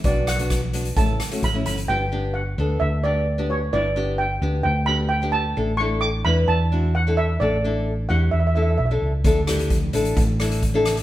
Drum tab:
HH |x-xxx-xxx-xxx-xx|----------------|----------------|----------------|
SD |--r-r-----r-----|----------------|----------------|----------------|
BD |o---o---o---o---|----------------|----------------|----------------|

HH |----------------|x-xxx-xxx-xxx-xx|
SD |----------------|--r-------r---r-|
BD |----------------|o---o---o---o---|